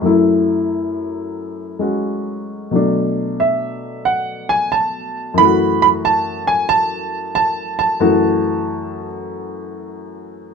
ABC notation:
X:1
M:4/4
L:1/8
Q:"Swing" 1/4=91
K:F#m
V:1 name="Grand piano"
z8 | z2 e2 f g a2 | b b a g a2 a a- | a3 z4 z |]
V:2 name="Grand piano"
[F,,F,A,E]4- [F,,F,A,E] [G,CF]3 | [B,,F,A,D]8 | [F,,E,A,F]8 | [F,,E,A,F]8 |]